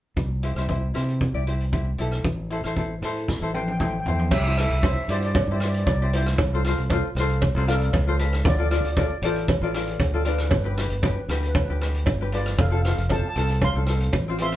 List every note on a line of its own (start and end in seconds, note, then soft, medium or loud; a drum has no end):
0.16 0.52 C2 medium
0.16 kick medium
0.16 closed hi-hat soft
0.43 0.51 E4 medium
0.43 0.52 G4 medium
0.43 0.52 C5 medium
0.43 closed hi-hat medium
0.55 0.91 C2 medium
0.55 0.65 E4 medium
0.55 0.65 G4 medium
0.55 0.65 C5 medium
0.55 cross-stick medium
0.55 closed hi-hat soft
0.69 0.85 E4 medium
0.69 0.85 G4 medium
0.69 0.86 C5 medium
0.69 kick medium
0.69 closed hi-hat medium
0.94 1.31 C3 medium
0.94 1.18 E4 medium
0.94 1.18 G4 medium
0.94 1.19 C5 medium
0.94 cross-stick medium
0.94 closed hi-hat medium
1.09 closed hi-hat medium
1.21 kick medium
1.21 closed hi-hat soft
1.34 1.95 C2 medium
1.34 1.42 E4 medium
1.34 1.42 G4 medium
1.34 1.42 D5 medium
1.47 1.63 E4 medium
1.47 1.63 G4 medium
1.47 1.63 C5 medium
1.47 closed hi-hat medium
1.60 closed hi-hat medium
1.72 1.89 E4 medium
1.72 1.89 G4 medium
1.72 1.89 C5 medium
1.72 kick medium
1.72 closed hi-hat medium
1.98 2.22 B1 medium
1.98 2.25 E4 medium
1.98 2.26 G4 medium
1.98 2.26 A4 medium
1.98 closed hi-hat medium
2.11 cross-stick medium
2.11 closed hi-hat medium
2.24 2.60 A1 medium
2.24 kick medium
2.24 closed hi-hat soft
2.50 2.59 E4 medium
2.50 2.59 A4 medium
2.50 2.60 C5 medium
2.50 closed hi-hat medium
2.64 2.99 A1 medium
2.64 2.72 E4 medium
2.64 2.73 A4 medium
2.64 2.73 C5 medium
2.64 cross-stick medium
2.64 closed hi-hat medium
2.76 2.93 E4 medium
2.76 2.93 A4 medium
2.76 2.94 C5 medium
2.76 kick medium
2.76 closed hi-hat medium
3.02 3.38 A2 medium
3.02 3.27 E4 medium
3.02 3.27 A4 medium
3.02 3.27 C5 medium
3.02 cross-stick medium
3.02 closed hi-hat medium
3.16 closed hi-hat medium
3.28 kick medium
3.28 snare soft
3.41 4.02 A1 medium
3.41 3.49 E4 medium
3.41 3.50 A4 medium
3.41 3.50 C5 medium
3.54 3.70 E4 medium
3.54 3.70 A4 medium
3.54 3.62 B4 medium
3.54 3.71 C5 medium
3.54 3.61 G5 medium
3.54 high tom medium
3.62 3.69 G5 medium
3.68 3.76 G5 medium
3.68 high tom soft
3.78 3.96 E4 medium
3.78 3.96 A4 medium
3.78 3.97 C5 medium
3.78 3.85 G5 medium
3.78 kick medium
3.78 mid tom medium
3.86 3.92 G5 medium
3.93 3.99 G5 medium
4.00 4.05 G5 medium
4.06 4.30 E2 medium
4.06 4.32 E4 medium
4.06 4.33 A4 soft
4.06 4.33 C5 medium
4.06 4.13 G5 medium
4.06 floor tom medium
4.15 4.23 G5 medium
4.19 floor tom medium
4.31 4.67 C2 loud
4.31 4.40 G4 medium
4.31 4.39 E5 medium
4.31 kick loud
4.31 crash loud
4.31 cowbell medium
4.40 4.46 E5 medium
4.46 4.54 E4 medium
4.46 4.54 G4 medium
4.46 4.54 C5 medium
4.46 4.55 E5 medium
4.56 4.74 E4 medium
4.56 4.74 G4 medium
4.56 4.74 A4 medium
4.56 4.63 E5 medium
4.56 cross-stick medium
4.56 closed hi-hat medium
4.64 4.69 E5 medium
4.70 4.94 C2 medium
4.70 4.76 E5 medium
4.70 closed hi-hat medium
4.78 4.83 E5 medium
4.83 5.00 E4 medium
4.83 5.00 G4 medium
4.83 5.00 C5 medium
4.83 4.91 E5 medium
4.83 kick medium
4.83 closed hi-hat medium
4.83 cowbell medium
4.92 5.00 E5 medium
5.08 5.44 G2 medium
5.08 5.33 E4 medium
5.08 5.17 F4 medium
5.08 5.34 G4 medium
5.08 5.34 C5 medium
5.08 5.16 D5 medium
5.08 closed hi-hat medium
5.17 5.24 D5 medium
5.22 5.29 D5 medium
5.22 closed hi-hat medium
5.31 5.37 D5 medium
5.35 5.44 D5 medium
5.35 kick loud
5.35 closed hi-hat medium
5.35 cowbell medium
5.45 5.83 G2 medium
5.45 5.53 D5 medium
5.51 5.57 E4 medium
5.51 5.58 G4 medium
5.51 5.58 C5 medium
5.51 5.59 D5 medium
5.60 5.85 E4 medium
5.60 5.86 G4 medium
5.60 5.86 C5 medium
5.60 5.67 D5 medium
5.60 cross-stick medium
5.60 closed hi-hat medium
5.68 5.77 D5 medium
5.74 5.83 D5 medium
5.74 closed hi-hat medium
5.84 6.34 C2 medium
5.84 5.92 D5 medium
5.84 kick medium
5.84 closed hi-hat medium
5.84 cowbell medium
5.93 5.99 D5 medium
6.00 6.09 E4 medium
6.00 6.09 G4 medium
6.00 6.09 C5 medium
6.00 6.08 D5 medium
6.13 6.37 E4 medium
6.13 7.65 F4 medium
6.13 6.38 G4 medium
6.13 7.73 C5 medium
6.13 6.38 C5 medium
6.13 closed hi-hat medium
6.26 cross-stick medium
6.26 closed hi-hat medium
6.38 6.74 C2 loud
6.38 kick loud
6.38 closed hi-hat medium
6.38 cowbell medium
6.53 6.60 F4 medium
6.53 6.61 A4 medium
6.53 6.61 C5 medium
6.64 6.81 F4 medium
6.64 6.82 A4 medium
6.64 6.82 C5 medium
6.64 cross-stick medium
6.64 closed hi-hat medium
6.77 7.01 C2 medium
6.77 closed hi-hat medium
6.90 7.07 F4 medium
6.90 7.07 A4 medium
6.90 7.07 C5 medium
6.90 kick medium
6.90 closed hi-hat medium
6.90 cowbell medium
7.15 7.51 C2 medium
7.15 cross-stick medium
7.15 closed hi-hat medium
7.19 7.41 F4 loud
7.19 7.41 A4 medium
7.19 7.41 C5 loud
7.30 closed hi-hat medium
7.42 kick medium
7.42 closed hi-hat medium
7.42 cowbell medium
7.55 7.90 C2 loud
7.55 7.63 F4 medium
7.55 7.64 A4 medium
7.55 7.64 C5 medium
7.67 7.91 F4 medium
7.67 7.91 A4 medium
7.67 8.42 A4 medium
7.67 7.92 D5 medium
7.67 8.48 F5 medium
7.67 cross-stick medium
7.67 closed hi-hat medium
7.81 closed hi-hat medium
7.93 8.41 C#2 medium
7.93 kick medium
7.93 closed hi-hat medium
7.93 cowbell medium
8.07 8.15 F4 medium
8.07 8.15 A4 medium
8.07 8.15 C5 medium
8.19 8.43 F4 medium
8.19 8.43 A4 medium
8.19 8.43 B4 medium
8.19 closed hi-hat medium
8.33 cross-stick medium
8.33 closed hi-hat medium
8.44 8.80 D2 loud
8.44 8.53 F4 medium
8.44 8.54 D5 medium
8.44 kick loud
8.44 closed hi-hat medium
8.44 cowbell medium
8.55 8.66 F4 medium
8.55 8.62 D5 medium
8.59 8.66 A4 medium
8.59 8.67 D5 medium
8.64 8.68 D5 medium
8.69 8.87 F4 medium
8.69 8.87 A4 medium
8.69 8.75 D5 medium
8.69 8.87 D5 medium
8.69 cross-stick medium
8.69 closed hi-hat medium
8.76 8.84 D5 medium
8.83 9.07 D2 medium
8.83 8.91 D5 medium
8.83 closed hi-hat medium
8.92 8.98 D5 medium
8.97 9.13 F4 medium
8.97 9.13 A4 medium
8.97 9.05 D5 medium
8.97 9.14 D5 medium
8.97 kick medium
8.97 closed hi-hat medium
8.97 cowbell medium
9.07 9.14 D5 medium
9.22 9.57 A1 medium
9.22 10.23 E4 medium
9.22 9.47 F4 medium
9.22 9.47 A4 medium
9.22 10.30 C5 medium
9.22 9.47 D5 medium
9.22 closed hi-hat medium
9.36 closed hi-hat medium
9.48 kick loud
9.48 closed hi-hat medium
9.48 cowbell medium
9.61 9.96 A1 medium
9.61 9.70 F4 medium
9.61 9.70 A4 medium
9.61 9.70 D5 medium
9.74 9.98 F4 medium
9.74 9.98 A4 medium
9.74 9.98 D5 medium
9.74 cross-stick medium
9.74 closed hi-hat medium
9.87 closed hi-hat medium
9.99 10.47 D2 medium
9.99 kick medium
9.99 closed hi-hat medium
9.99 cowbell medium
10.14 10.21 F4 medium
10.14 10.21 A4 medium
10.14 10.22 D5 medium
10.25 10.34 D4 medium
10.25 10.49 F4 medium
10.25 10.49 A4 medium
10.25 10.34 B4 medium
10.25 10.49 D5 medium
10.25 closed hi-hat medium
10.35 10.41 B4 medium
10.35 cross-stick medium
10.35 closed hi-hat medium
10.43 10.49 B4 medium
10.50 10.86 G1 loud
10.50 10.56 B4 soft
10.50 kick loud
10.50 closed hi-hat medium
10.50 cowbell medium
10.58 10.64 B4 soft
10.64 10.72 D4 medium
10.64 10.73 G4 medium
10.64 10.70 B4 medium
10.64 10.73 B4 medium
10.71 10.78 B4 medium
10.77 10.93 D4 medium
10.77 10.94 G4 medium
10.77 10.94 B4 medium
10.77 10.87 B4 soft
10.77 cross-stick medium
10.77 closed hi-hat medium
10.88 11.14 G1 medium
10.88 10.94 B4 soft
10.88 closed hi-hat medium
10.96 11.02 B4 soft
11.03 11.19 D4 medium
11.03 11.20 G4 medium
11.03 11.09 B4 medium
11.03 11.20 B4 medium
11.03 kick medium
11.03 closed hi-hat medium
11.03 cowbell medium
11.10 11.16 B4 soft
11.17 11.23 B4 soft
11.25 11.64 D2 medium
11.25 11.31 B4 soft
11.29 11.53 D4 medium
11.29 11.53 G4 medium
11.29 11.53 B4 medium
11.29 11.39 B4 soft
11.29 cross-stick medium
11.29 closed hi-hat medium
11.41 11.46 B4 soft
11.41 closed hi-hat medium
11.47 11.52 B4 medium
11.54 11.60 B4 medium
11.54 kick loud
11.54 closed hi-hat medium
11.54 cowbell medium
11.61 11.68 B4 medium
11.68 12.02 D2 medium
11.68 11.76 D4 medium
11.68 11.77 G4 medium
11.68 11.77 B4 medium
11.81 12.05 D4 medium
11.81 12.05 G4 medium
11.81 12.05 B4 medium
11.81 cross-stick medium
11.81 closed hi-hat medium
11.94 closed hi-hat medium
12.06 12.54 G1 medium
12.06 kick loud
12.06 closed hi-hat medium
12.06 cowbell medium
12.21 12.28 D4 medium
12.21 12.28 G4 medium
12.21 12.29 B4 medium
12.32 12.56 D4 medium
12.32 12.57 F4 medium
12.32 12.56 G4 medium
12.32 12.57 B4 medium
12.32 12.58 D5 medium
12.32 closed hi-hat medium
12.46 cross-stick medium
12.46 closed hi-hat medium
12.58 12.93 F1 loud
12.58 12.66 A4 medium
12.58 12.66 F5 medium
12.58 kick loud
12.58 closed hi-hat medium
12.58 cowbell medium
12.70 12.79 C4 medium
12.70 12.79 F4 medium
12.70 12.79 A4 medium
12.70 12.81 F5 medium
12.82 13.00 C4 medium
12.82 12.88 F5 medium
12.82 cross-stick medium
12.82 closed hi-hat medium
12.86 13.01 F4 medium
12.86 13.01 A4 medium
12.86 12.96 F5 medium
12.97 13.20 F1 medium
12.97 13.04 F5 medium
12.97 closed hi-hat medium
13.09 13.26 C4 medium
13.09 13.26 F4 medium
13.09 13.26 A4 medium
13.09 13.18 C5 medium
13.09 13.19 A5 medium
13.09 kick medium
13.09 closed hi-hat medium
13.09 cowbell medium
13.20 13.27 A5 medium
13.28 13.34 A5 medium
13.36 13.71 C2 medium
13.36 13.59 C4 medium
13.36 13.60 F4 medium
13.36 13.60 A4 medium
13.36 13.41 A5 medium
13.36 closed hi-hat medium
13.42 13.49 A5 medium
13.49 13.57 A5 medium
13.49 closed hi-hat medium
13.61 14.36 F5 medium
13.61 14.41 C6 loud
13.61 kick loud
13.61 closed hi-hat medium
13.61 cowbell medium
13.74 14.09 C2 medium
13.74 13.82 C4 medium
13.74 13.83 F4 medium
13.74 13.83 A4 medium
13.86 14.11 C4 medium
13.86 14.11 F4 medium
13.86 14.11 A4 medium
13.86 cross-stick medium
13.86 closed hi-hat medium
14.00 closed hi-hat medium
14.12 14.56 A1 medium
14.12 kick loud
14.12 closed hi-hat medium
14.12 cowbell medium
14.28 14.35 C4 medium
14.28 14.35 F4 medium
14.28 14.36 C5 medium
14.38 14.56 C4 medium
14.38 14.56 F4 medium
14.38 14.56 E5 medium
14.38 14.56 C6 loud
14.38 closed hi-hat loud
14.43 14.56 C5 medium
14.52 cross-stick medium
14.52 closed hi-hat medium